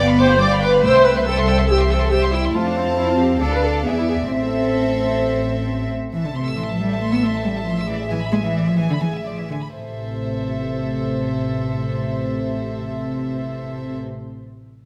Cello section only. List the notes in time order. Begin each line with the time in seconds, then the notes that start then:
Already playing: B3
0.40 G3
0.84 A3
1.27 G3
1.70 E3
2.13 G3
2.55 A3
2.98 C4
3.42 D4
3.86 B3
4.31 C4
6.13 E3
6.26 D3
6.36 C3
6.57 E3
6.70 F3
6.80 G3
7.01 A3
7.14 B3
7.24 A3
7.45 G3
7.67 F3
7.89 E3
8.11 E3
8.33 G#3
8.45 E3
8.67 F3
8.78 E3
8.90 D3
9.01 E3
9.25 F3
9.38 E3
9.50 D3
9.74 C3